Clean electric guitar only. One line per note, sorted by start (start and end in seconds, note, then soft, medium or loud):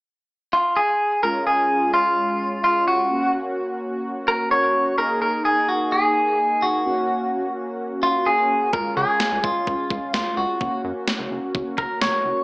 0.53 0.77 F4 medium
0.76 1.23 G#4 medium
1.23 1.46 A#4 loud
1.47 1.93 G#4 loud
1.94 2.63 F4 medium
2.64 2.87 F4 medium
2.88 3.31 F#4 medium
4.28 4.51 A#4 loud
4.51 4.98 C#5 loud
4.98 5.21 A#4 loud
5.22 5.45 A#4 medium
5.45 5.67 G#4 medium
5.69 5.90 F#4 medium
5.92 6.65 G#4 medium
6.62 7.52 F#4 medium
8.03 8.27 F4 medium
8.26 8.73 G#4 medium
8.73 8.95 A#4 loud
8.97 9.45 G#4 loud
9.44 10.13 F4 medium
10.14 10.37 F4 medium
10.37 10.81 F#4 medium
11.78 12.01 A#4 medium
12.02 12.44 C#5 loud